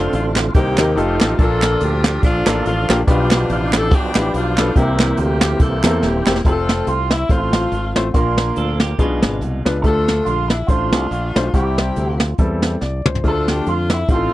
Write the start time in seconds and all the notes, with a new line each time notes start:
Already playing: D3 A3 C4 D4 F4 A4
0.13 A1 F4, closed hi-hat
0.36 snare, clap, closed hi-hat
0.54 C2 C3 D#3 A#3 C4 D#4 G4 A#4, kick, closed hi-hat
0.78 D#2 C4 D#4 G4 A#4, snare, clap, closed hi-hat
0.95 F1 F3 G3 A3 C4 D#4 F4 G4 A4, closed hi-hat
1.01 A3
1.21 A1 D#4 F4 G4 A4, snare, clap, closed hi-hat
1.37 A#1 A#2 F3 A#3 D4 F4 A4, kick, closed hi-hat
1.62 snare, clap, closed hi-hat
1.80 D2 D4 G4, closed hi-hat
2.04 snare, clap, closed hi-hat
2.23 A#1 A3 D4 F4, kick, closed hi-hat
2.47 A1 A#3 D4 F4 A4, snare, clap, closed hi-hat
2.65 A1 A3 D4 F4, closed hi-hat
2.89 A#1 A#3 D4 F4 G4, snare, clap, closed hi-hat
3.07 B1 B2 F3 B3 D4 F4 F#4 G4, kick, closed hi-hat
3.13 G4
3.31 snare, clap, closed hi-hat
3.49 A1 F4, closed hi-hat
3.73 A4, snare, clap, closed hi-hat
3.91 B1 D4 G4, kick, closed hi-hat
4.15 A1 B3 D4 F4 G4, snare, clap, closed hi-hat
4.34 B1 D4 F4, closed hi-hat
4.58 B3 D4 F4 A4, snare, clap, closed hi-hat
4.76 C2 C3 E3 G3 A#3 C4 D4 E4 G4, kick, closed hi-hat
4.82 E4
4.99 snare, clap, closed hi-hat
5.17 D2 A#3 E4 G4, closed hi-hat
5.41 snare, clap, closed hi-hat
5.59 C2 E4 A4, kick, closed hi-hat
5.84 E2 A#3 C4 E4 A4, snare, clap, closed hi-hat
6.02 D#1 A#3 E4 G4, snare
6.26 E1 A#3 C4 E4 G4, snare, clap
6.36 snare
6.45 F1 A3 C4 F4 G4 A4, kick, closed hi-hat
6.51 A4
6.69 snare, closed hi-hat
6.87 C2 F4, closed hi-hat
7.10 E4, snare, closed hi-hat
7.29 A1 A3 C4 F4 C5, kick, closed hi-hat
7.53 snare, closed hi-hat
7.72 G#1, closed hi-hat
7.95 A1 A3 C4 F4 C5, snare, closed hi-hat
8.14 A#1 A#2 A#3 D4 F4 A#4, kick, closed hi-hat
8.38 snare, closed hi-hat
8.56 D2 C4 A4, closed hi-hat
8.80 A#3 G4, snare, closed hi-hat
8.98 B1 B2 G#3 B3 C#4 F4 G#4, kick, closed hi-hat
9.04 D4
9.22 G#1, snare, closed hi-hat
9.41 C2, closed hi-hat
9.65 C#2 B3 D4 F4 B4, snare, closed hi-hat
9.82 D2 D3 A3 D4 F4 G4 A4, kick, closed hi-hat
9.89 A4
10.08 snare, closed hi-hat
10.25 A#1 F4, closed hi-hat
10.48 E4, snare, closed hi-hat
10.67 A1 A3 D4 F4 C5, kick, closed hi-hat
10.92 C2, snare, closed hi-hat
11.11 A#1, closed hi-hat
11.35 B1 A3 D4 F4 C5, snare, closed hi-hat
11.54 C2 C3 G3 C4 E4 G4, kick, closed hi-hat
11.78 snare, closed hi-hat
11.96 D2, closed hi-hat
12.12 F4
12.20 snare, closed hi-hat
12.38 E2 G3 C4 E4 A4, kick, closed hi-hat
12.62 snare, closed hi-hat
12.81 C2 D5, snare
13.05 C#2 C5, mid tom
13.15 floor tom
13.24 D2 D3 A3 D4 F4 G#4 A4, kick, closed hi-hat
13.28 A4
13.48 G4, snare, closed hi-hat
13.66 F2 F4, closed hi-hat
13.90 E4, snare, closed hi-hat
14.08 A1 A2 C4 D#4 F4 G4, kick, closed hi-hat
14.14 A4